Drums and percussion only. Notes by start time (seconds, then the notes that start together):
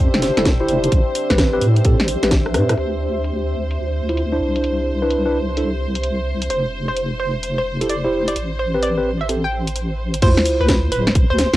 0.14 snare
0.22 snare, open hi-hat
0.37 snare, closed hi-hat
0.45 kick, snare, closed hi-hat
0.68 open hi-hat
0.84 closed hi-hat
0.92 kick, closed hi-hat
1.15 open hi-hat
1.30 kick, snare, closed hi-hat
1.38 kick, snare, closed hi-hat
1.61 open hi-hat
1.76 closed hi-hat
1.85 kick, closed hi-hat
2.00 snare
2.08 open hi-hat
2.23 snare, closed hi-hat
2.31 kick, snare, closed hi-hat
2.46 cross-stick
2.54 cross-stick, open hi-hat
2.69 cross-stick, closed hi-hat
2.78 closed hi-hat
3.24 closed hi-hat
3.71 closed hi-hat
4.09 closed hi-hat
4.17 closed hi-hat
4.56 closed hi-hat
4.64 closed hi-hat
5.10 closed hi-hat
5.57 closed hi-hat
5.95 closed hi-hat
6.03 closed hi-hat
6.42 closed hi-hat
6.50 closed hi-hat
6.97 closed hi-hat
7.43 closed hi-hat
7.81 closed hi-hat
7.90 closed hi-hat
8.28 closed hi-hat
8.36 closed hi-hat
8.83 closed hi-hat
9.29 closed hi-hat
9.67 closed hi-hat
9.76 closed hi-hat
10.14 closed hi-hat
10.22 kick, closed hi-hat, crash
10.37 snare
10.45 open hi-hat
10.68 kick, snare, closed hi-hat
10.92 open hi-hat
11.07 snare
11.15 kick, closed hi-hat
11.38 snare, open hi-hat
11.54 snare, closed hi-hat